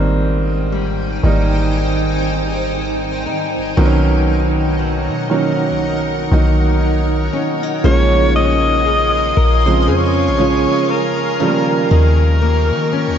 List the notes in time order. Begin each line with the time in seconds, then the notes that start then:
Already playing: G#1 G#2 D#3 G3 A#3 C4 D#4 C5 G5 G#5
0.72 G3
1.23 G#1 D#3 G3 A#3 D#4
3.26 D#3 D#4
3.56 G#1
3.77 B1 B2 D#3 F#3 A#3 C4 A#4 D#5 F#5
3.85 C#4
4.79 F#3
5.09 B2
5.30 D#3 F#3 A#3 C#4
5.70 B1
5.81 C#5
6.31 B1 D#3 F#3 A#3 D#4
7.33 C#4
7.63 D#4
7.84 A#1 C#3 F3 G#3 A#3 C#4 A#4 C#5 F5 G#5 C6
8.35 C#4 D#5
8.86 G#4
9.37 A#1 A#4
9.66 C#3 F3 G#3 C4 C5
9.87 F2 C#4 G#4 C#5 A#5
10.28 A#1
10.38 C#3 F3 G#3 C#4 G#4
10.90 A#4
11.40 C#3 D#3 F3 G3 A3 A#4 D#5 G5 C#6
11.48 A#3
11.91 D#2 D#3 A#4
12.42 A#3
12.72 D#3
12.93 C#4
13.08 D#2